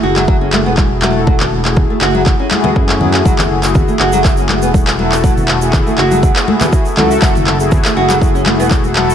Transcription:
Already playing: A3 E4 F#4 G#4
0.03 F#1 F#4
0.16 F#3, clap, high conga
0.28 F#3, kick
0.41 C#4
0.53 A3, clap, high conga
0.66 E1 B3
0.77 kick, clap, high conga
1.02 F#3 A3 E4 F#4 A4, clap, high conga
1.27 F#3, kick, high conga
1.40 clap, low conga
1.65 A3 E4 F#4 G#4, clap
1.76 kick, low conga
1.90 A3
2.01 F#1 F#4, clap
2.15 F#3, high conga
2.26 kick, clap
2.39 C#4
2.51 A3 E4 F#4 G#4, clap, high conga
2.64 B3, high conga, low conga
2.76 F#2, kick
2.88 clap, high conga
3.01 F#3, low conga
3.14 clap
3.25 F#1 F#3, kick, high conga, shaker
3.38 clap, low conga, shaker
3.63 A3 E4 F#4 G#4, clap, shaker
3.75 kick, low conga, shaker
3.88 A3, shaker
3.99 F#1 F#4, clap
4.12 F#3, high conga, shaker
4.24 F#3, kick, clap, shaker
4.37 C#4, shaker
4.49 A3, clap, high conga
4.62 E1 B3, shaker
4.74 kick, high conga, shaker
4.87 clap, shaker
4.99 F#3 A3 E4 F#4 A4, high conga
5.12 clap, shaker
5.24 F#3, kick, high conga, shaker
5.37 low conga, shaker
5.48 clap
5.61 A3 E4 F#4 G#4, shaker
5.73 kick, clap, low conga, shaker
5.87 A3, shaker
5.98 F#1 F#4, clap
6.11 F#3, high conga, shaker
6.23 F#3, kick, shaker
6.36 C#4, clap, shaker
6.48 A3, high conga
6.61 B3, clap, high conga, low conga, shaker
6.73 kick, shaker
6.85 shaker
6.97 C#2 F#3 A3 E4 F#4 A4, clap, low conga
7.11 shaker
7.22 F#1 F#3, kick, clap, high conga, shaker
7.35 low conga, shaker
7.47 clap
7.60 A3 E4 F#4 G#4, shaker
7.71 kick, low conga, shaker
7.85 A3, clap, shaker
7.96 F#1 F#4
8.10 F#3, clap, high conga, shaker
8.22 F#3, kick, shaker
8.35 C#4, shaker
8.46 A3, clap, high conga
8.59 E1 B3, shaker
8.71 kick, clap, high conga, shaker
8.84 shaker
8.95 F#3 A3 E4 F#4 A4, clap, high conga
9.10 shaker

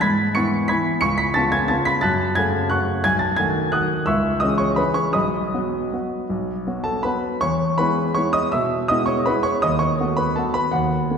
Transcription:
0.01 G#2 B5 G#6 B6
0.35 E3 B3 E4 C#6 C#7
0.68 E3 B3 E4 B5 G#6 B6
1.01 C#2 C#6 C#7
1.18 B5 B6
1.34 C#3 B3 F4 A5 A6
1.52 G#5 G#6
1.68 C#3 B3 F4 A5 A6
1.85 B5 B6
2.01 F#2 A5 F#6 A6
2.35 C#3 A3 F#4 G#5 G#6
2.70 C#3 A3 F#4 F#5 C#6 F#6
3.04 B1 G#5 G#6
3.19 A5 A6
3.36 D#3 A3 F#4 G#5 G#6
3.72 D#3 A3 F#4 F#5 D#6 F#6
4.06 C#2 E5 C#6 E6
4.40 E3 G#3 C#4 D#5 D#6
4.58 C#5 C#6
4.76 E3 G#3 C#4 B4 B5
4.94 C#5 C#6
5.13 B1 D#5 B5 D#6
5.54 F#3 B3 F#4
5.93 F#3 B3 F#4
6.30 B1
6.67 F#3 B3 F#4
6.84 A4 A5
7.03 F#3 B3 F#4 B4 B5
7.41 E2 C#5 C#6
7.78 G#3 B3 E4 B4 B5
8.15 G#3 B3 E4 C#5 C#6
8.33 D#5 D#6
8.52 B2 E5 E6
8.88 G#3 B3 E4 D#5 D#6
9.06 C#5 C#6
9.26 G#3 B3 E4 B4 B5
9.43 C#5 C#6
9.62 D#2 D#5 D#6
9.79 C#5 C#6
10.00 A3 B3 F#4
10.17 B4 B5
10.36 A3 B3 F#4 A4 A5
10.54 B4 B5
10.72 D#2 F#4 F#5
11.10 A3 B3 F#4

